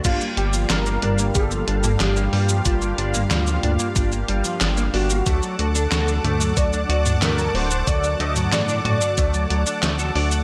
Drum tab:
CC |x---------------|----------------|----------------|----------------|
HH |x-x-x-x-x-x-x-o-|x-x-x-x-x-x-x-o-|x-x-x-x-x-x-x-o-|x-x-x-x-x-x-x-o-|
SH |xx-xxx-xxx-xxx-x|xx-xxx-xxx-xxx-x|xx-xxx-xxx-xxx-x|xx-xxx-xxx-xxx-x|
CP |----x-------x---|----x-------x---|----x-------x---|----x-------x---|
SD |----o-------o---|----o-------o---|----o-------o---|----o-------o---|
T2 |------o----o----|---o--o---------|------o----o----|---o--o---------|
BD |o-------o-------|o-------o-------|o-------o-------|o-------o-------|